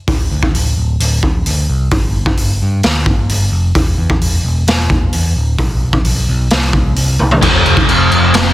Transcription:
0.08 picked electric bass D1, kick, open hi-hat
0.31 picked electric bass D2
0.43 kick
0.55 picked electric bass D1, open hi-hat
0.77 picked electric bass D1
1.00 picked electric bass D1, open hi-hat
1.23 picked electric bass D1, kick
1.46 picked electric bass D2, open hi-hat
1.70 picked electric bass C2
1.91 picked electric bass G1, kick, open hi-hat
2.26 kick
2.37 picked electric bass G1, open hi-hat
2.62 picked electric bass G2
2.83 picked electric bass D2, snare, open hi-hat
3.06 picked electric bass G1, kick
3.29 picked electric bass G1, open hi-hat
3.52 picked electric bass F1
3.75 picked electric bass E1, kick, open hi-hat
3.98 picked electric bass E2
4.10 kick
4.21 picked electric bass E1, open hi-hat
4.44 picked electric bass E1
4.67 picked electric bass E1, snare, open hi-hat
4.90 picked electric bass E1, kick
5.13 picked electric bass E2, open hi-hat
5.36 picked electric bass D1
5.58 picked electric bass B1, kick, open hi-hat
5.93 kick
6.04 picked electric bass B1, open hi-hat
6.29 picked electric bass B1
6.50 picked electric bass C2, snare, open hi-hat
6.73 picked electric bass C2, kick
6.96 picked electric bass C2, open hi-hat
7.19 picked electric bass C2, high tom
7.31 floor tom
7.41 picked electric bass F1, overdriven electric guitar F2 C3 F3, kick, crash
7.66 picked electric bass F1, crash
7.77 kick
7.88 picked electric bass F1, crash
8.11 picked electric bass F1, crash
8.34 picked electric bass F1, snare, crash

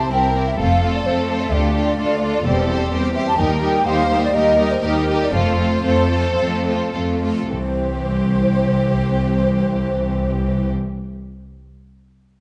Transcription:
Already playing: timpani C3, viola section C4, violin section E4 G4, flute section A5
0.11 cello section C2, viola section C4, violin section E4 G4 A#4, flute section G5
0.35 viola section C4, violin section E4 G4
0.48 flute section E5
0.58 double bass section F1, cello section F2, viola section A3 C4, violin section F4 A4, flute section F5
0.82 viola section A3 C4, violin section F4 A4
0.95 flute section D5
1.05 cello section F2, viola section A3 C4, violin section F4 A4, flute section C5
1.29 viola section A3 C4, violin section F4 A4
1.41 flute section E5
1.51 double bass section D2, cello section D2, viola section A3 D4, violin section F4 G4 A4, flute section D5
1.75 viola section A3 D4, violin section F4 A4
1.98 cello section D2, viola section A3 D4, violin section F4 A4
2.22 viola section A3 D4, violin section F4 A4
2.45 double bass section E1, cello section E2, viola section G3 C4, violin section G4 A4 C5
2.68 viola section G3 C4, violin section G4 C5
2.91 cello section E2, viola section G3 C4, violin section G4 C5
3.15 viola section G3 C4, violin section G4 C5, flute section E5
3.27 flute section A5
3.38 double bass section D#2, cello section D#2, viola section G3 D#4, violin section G4 A#4, flute section G5
3.62 viola section G3 D#4, violin section G4 A#4
3.86 cello section D#2, viola section G3 D#4, violin section G4 A#4 C5, flute section F5
4.10 viola section G3 D#4, violin section G4 A#4
4.23 flute section D5
4.34 cello section D#2, viola section G3 D#4, violin section G4 A#4, flute section D#5
4.59 viola section G3 D#4, violin section G4 A#4
4.71 flute section C5
4.84 cello section D#2, viola section G3 D#4, violin section G4 A#4, flute section A#4
5.09 viola section G3 D#4, violin section G4 A#4
5.22 flute section D5
5.33 double bass section F1, cello section F2, viola section A3 C4, violin section F4 A4, flute section C5
5.59 viola section A3 C4, violin section F4 A4
5.85 cello section F2, viola section A3 C4, violin section F4 A4
6.10 viola section A3 C4, violin section F4 A4
6.38 cello section F2, viola section A3 C4, violin section F4 A4
6.66 viola section A3 C4, violin section F4 A4
6.94 cello section F2, viola section A3 C4, violin section F4 A4
7.22 viola section A3 C4, violin section F4 A4
7.53 double bass section C2, cello section C2, timpani C3, viola section E3, violin section C4 G4, flute section C5

